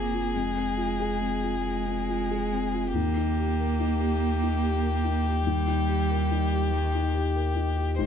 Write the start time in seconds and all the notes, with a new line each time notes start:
Already playing: F1 F2 A#3 C4 F4 G#4
0.13 F4
0.33 F2 G#3
0.56 C4
0.77 F4
1.00 G#4
1.21 C4
1.43 F4
1.63 G#3
1.86 C4
2.09 F4
2.31 G#4
2.53 C4
2.73 F4
2.94 D#2 A#3 G4
3.16 D#4
3.37 G4
3.60 A#4
3.80 D#4
4.00 G4
4.42 D#4
4.62 G4
4.82 A#4
5.04 D#4
5.26 G4
5.46 D#2 G3
5.67 D#4
5.89 G4
6.10 A#4
6.31 D#4
6.52 G4
6.72 D#3
6.95 D#4
7.14 G4
7.35 A#4
7.56 D#4
7.77 G4
7.98 G#1 G#2 G#3 C5